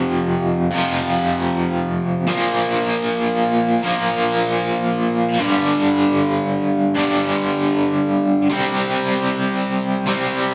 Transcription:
Already playing: F2 C3 F3
0.71 F2 C3 F3
2.27 A#2 F3 A#3
3.83 A#2 F3 A#3
5.39 G2 D3 G3
6.95 G2 D3 G3
8.50 C3 G3 C4
10.06 C3 G3 C4

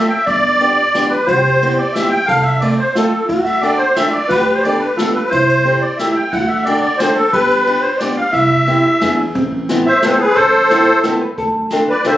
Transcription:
Already playing: A3 C4 F4 A4 E5
0.08 G5
0.16 E5
0.26 G1 D5, kick, ride
0.60 B3 D4 F4 G4, ride
0.94 B3 D4 F4 G4, snare, ride
1.10 B4
1.26 C2 G4 C5, kick, ride
1.45 ride
1.62 B3 C4 E4 G4, ride
1.78 D5
1.93 B3 C4 E4 G4 E5, snare, ride
2.09 G5
2.26 C2 A4 F5, kick, ride
2.42 E5
2.59 A3 C4 F4 D5, ride
2.64 A4
2.78 C5
2.95 A3 C4 F4 A4, snare, ride
3.29 D2 F#4, kick, ride
3.44 E5, ride
3.61 C4 D4 F#4 A4 D5, ride
3.78 C5
3.95 C4 D4 F#4 A4 E5, snare, ride
4.02 E4
4.10 D5
4.28 D2 G4 B4, kick, ride
4.55 C5
4.62 B3 D4 G4 D5, ride
4.67 A4
4.79 B4
4.96 F4 A4, snare, ride
5.00 B3 D4 G4 A4
5.14 B4
5.29 C2 E4 C5, kick, ride
5.49 ride
5.65 C4 E4 G4 A4, ride
5.81 D5
5.97 C4 G4 A4 E5, snare, ride
6.01 E4
6.14 G5
6.31 D2 F#4 F#5, kick, ride
6.48 E5
6.53 E5 F#5
6.64 C4 D4 F#4 A4 D5, ride
6.81 D5
6.98 C4 D4 C5, snare, ride
7.02 F#4 A4
7.16 A4
7.32 G1 G4 B4, kick, ride
7.51 ride
7.67 B3 D4 F4 G4, ride
7.81 C5
7.98 B3 D4 D5, snare, ride
8.02 F4 G4
8.16 F5
8.32 C2 E4 E5, kick, ride
8.67 B3 C4 E4 G4, ride
9.01 E2 B3 D4 E4 G#4, snare, ride
9.35 A1 C4, kick, closed hi-hat
9.69 B3 C4 E4 A4, snare, closed hi-hat
9.86 C5 E5
10.02 B3 C4 A4 C5, snare, closed hi-hat
10.06 E4 B4 C5
10.12 A4
10.19 G#4 B4
10.35 A1 A4 C5, kick, closed hi-hat
10.70 B3 C4 E4 A4, snare, closed hi-hat
11.03 B3 C4 E4 A4, snare, closed hi-hat
11.22 B4
11.38 D2 A4, kick, closed hi-hat
11.70 C4 D4 F4 A4, snare, closed hi-hat
11.89 B4 D5
12.04 C4 D4 F4 A4 C5 E5, snare, closed hi-hat

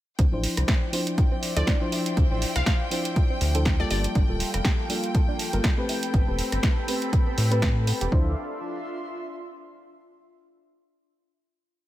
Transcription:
0.19 D2 F3 C4 G5, kick, closed hi-hat
0.29 A1 F3 D4 D5
0.33 E4 C5
0.44 open hi-hat
0.57 C2, cross-stick, closed hi-hat
0.68 E4, kick, snare, closed hi-hat
0.75 E5
0.92 F3 C4 D4 E4 C5, open hi-hat
1.07 C6, closed hi-hat
1.18 F4, kick, closed hi-hat
1.32 C4
1.43 open hi-hat
1.56 D2 F3 D4 E4 A4 C5 D5, closed hi-hat
1.67 C4, kick, snare, closed hi-hat
1.81 F3 D4 E4 C5
1.92 E4, open hi-hat
2.06 closed hi-hat
2.17 D2 C4, kick, closed hi-hat
2.30 A1 F3 D4 E4 C5
2.42 open hi-hat
2.56 C2 F5, cross-stick, closed hi-hat
2.66 E4 F5, kick, snare, closed hi-hat
2.91 F3 C4 D4 E4 C5, open hi-hat
3.05 closed hi-hat
3.16 F4, kick, closed hi-hat
3.30 C4
3.41 D2, open hi-hat
3.54 F3 D4 E4 A4 C5, closed hi-hat
3.65 C4, kick, snare, closed hi-hat
3.79 G3 A#3 F4 A4 D5
3.91 G1 G4 D5, open hi-hat
3.97 A#3
4.04 closed hi-hat
4.11 G5
4.15 G1 D4 F4 A4 G5, kick, closed hi-hat
4.28 D1 G3 A#3 F4 A4
4.40 open hi-hat
4.54 F1, cross-stick, closed hi-hat
4.65 G4, kick, snare, closed hi-hat
4.89 G3 A#3 D4 F4 A4, open hi-hat
5.04 closed hi-hat
5.15 A4, kick, closed hi-hat
5.28 D4
5.39 open hi-hat
5.53 G1 G3 A#3 F4 A4 A#4, closed hi-hat
5.64 D4, kick, snare, closed hi-hat
5.78 A3 C4 G4 B4
5.89 C4 E4 B5, open hi-hat
6.03 closed hi-hat
6.14 A1 B3, kick, closed hi-hat
6.26 E1 A3 C4 G4 A4 B4
6.39 open hi-hat
6.52 G1, cross-stick, closed hi-hat
6.63 E4, kick, snare, closed hi-hat
6.72 B5
6.87 A3 B3 C4 G4 B4, open hi-hat
7.02 closed hi-hat
7.13 G4, kick, closed hi-hat
7.27 B3
7.38 A2, open hi-hat
7.51 A3 C4 G4 B4, closed hi-hat
7.62 B3, kick, snare, closed hi-hat
7.87 B3, open hi-hat
8.01 E1 G4, closed hi-hat
8.11 D2 F3 C4 D4 E4 A4 C5 D5 E5 F5 C6, kick
8.20 F4
8.28 E5
8.35 C6

